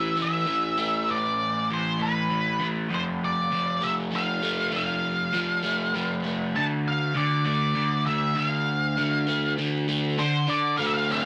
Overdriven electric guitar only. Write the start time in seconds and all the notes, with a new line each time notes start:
Already playing: A2 E3
0.17 A3
0.47 E3
0.78 A3
1.09 A2
1.70 E3
1.99 A3
2.30 E3
2.60 A3
2.90 F3
3.51 F3
3.81 A3
4.11 F3
4.43 A3
4.72 F3
5.34 F3
5.63 A3
5.95 F3
6.25 A3
6.56 D3
7.15 D3
7.45 A3
7.75 D3
8.07 A3
8.36 D3
8.98 D3
9.28 A3
9.58 D3
9.88 A3
10.19 D3
10.48 D3
10.79 A3
11.10 C4